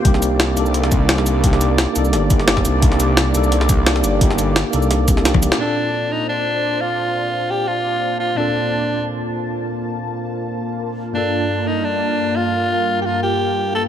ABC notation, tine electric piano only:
X:1
M:4/4
L:1/8
Q:1/4=173
K:Bb
V:1 name="Tine electric piano"
[B,DEG]3 [B,DEA]3 [B,DEG]2 | [B,DEG]3 [B,DEA]3 [B,DEG]2 | [B,DEG]3 [B,DEA]3 [B,DEG]2 | [B,DEG]3 [B,DEA]3 [B,DEG]2 |
[B,,CDFA]8- | [B,,CDFA]8 | [B,,CDFA]8- | [B,,CDFA]8 |
[G,,B,DFA]8- | [G,,B,DFA]8 |]